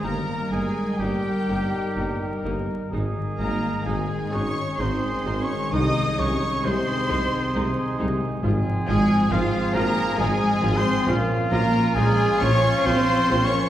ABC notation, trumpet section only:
X:1
M:3/4
L:1/8
Q:1/4=66
K:Ab
V:1 name="Trumpet section"
B2 B4 | A2 A2 A2 | A2 A4 | [K:Fm] A2 A2 A2 |
F6 |]